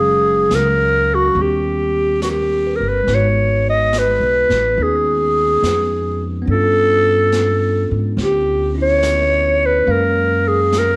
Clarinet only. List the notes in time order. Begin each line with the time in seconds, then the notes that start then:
Already playing: G#4
0.55 A#4
1.15 F#4
1.42 G4
2.23 F#4
2.30 G4
2.76 A#4
2.88 B4
3.15 C#5
3.70 D#5
3.98 B4
4.83 G#4
6.51 A4
8.22 G4
8.82 C#5
9.66 B4
9.91 A#4
10.48 G#4
10.79 A#4